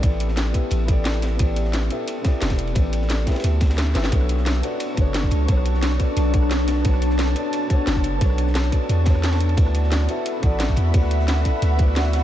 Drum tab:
RD |x---x---x---x---x---x---x-x-x---|x---x---x---x---x---x---x-x-x-x-|x---x---x---xxxxx---x-x-x---x-x-|x---x---x---x---x---x---x---x---|
HH |x---x---x---x---x---x---x---x---|x---x---x---x---x---x---x---x---|x---x---x---x---x---x---x---x---|x---x---x---x---x---x---x---x---|
SD |------o-o---------------o---o---|------o-o-----------o---o-o-----|------o-o---oooo----o-o-o-o-o-o-|--r---o-o-r-------------o-------|
BD |o-----------o-------o-----------|o-------------------o-----o-----|o-----------o-------o-----------|o-------------------o-----o-----|

RD |x---x---x---x---x---x---x-x-x---|x---x---x---x---x---x---x---x---|x---x---x---x---x---x---x-x---x-|x---x---x---x---x---x---x---x---|
HH |x---x---x---x---x---x---x---x---|x---x---x---x---x---x---x---x---|x---x---x---x---x---x---x---x---|x---x---x---x---x---x---x---x---|
SD |--r---o-o-r-----------r-o---o---|--r---o-o-r-------------o-------|--r---o-o-r---------o-r-o-o-----|--r---o-o-r-------------o-------|
BD |o-----------o-------o-----------|o-------------------o-----o-----|o-----------o-------o-----------|o-------------------o-----o-----|

RD |x---x---x---x---x---x---x-x-x---|
HH |x---x---x---x---x---x---x---x---|
SD |--r---o-o-r-----------r-o---o---|
BD |o-----------o-------o-----------|